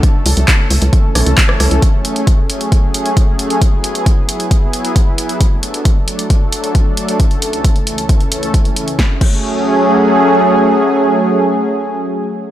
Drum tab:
CC |----------------|----------------|----------------|----------------|
HH |x-oxx-oxx-oxx-ox|x-xxx-xxx-xxx-xx|x-xxx-xxx-xxx-xx|x-xxx-xxx-xxx-xx|
CP |----x-------x---|----------------|----------------|----------------|
SD |----------r--rr-|----------------|----------------|----------------|
BD |o---o---o---o---|o---o---o---o---|o---o---o---o---|o---o---o---o---|

CC |----------------|--x-------------|----------------|
HH |xxxxxxxxxxxxxxxx|----------------|----------------|
CP |----------------|----------------|----------------|
SD |----------------|o---------------|----------------|
BD |o---o---o---o---|o-o-------------|----------------|